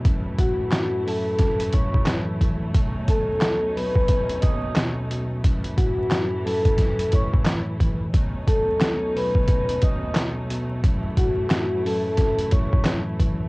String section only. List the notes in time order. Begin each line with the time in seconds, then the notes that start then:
Already playing: F#3 A3
0.05 F#2 E3 E4
2.73 B2 C#4 D#4
5.42 F#2 E3 F#3 E4
8.13 B2 F#3 A3 C#4 D#4
10.84 F#2 E3 E4